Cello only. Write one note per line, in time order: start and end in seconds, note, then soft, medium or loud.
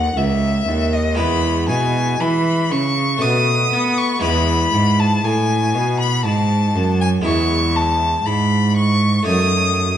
0.00 0.16 D#2 medium
0.16 0.67 C#2 medium
0.68 1.20 D#2 medium
1.18 1.71 E2 medium
1.70 2.20 B2 medium
2.21 2.73 E3 medium
2.71 3.22 C#3 medium
3.23 3.72 B2 medium
3.74 4.23 B3 medium
4.24 4.73 E2 medium
4.74 5.24 G#2 medium
5.25 5.76 A2 medium
5.75 6.26 B2 medium
6.25 6.77 G#2 medium
6.75 7.25 F#2 medium
7.25 8.22 E2 medium
8.26 9.25 G#2 medium
9.27 9.97 F#2 medium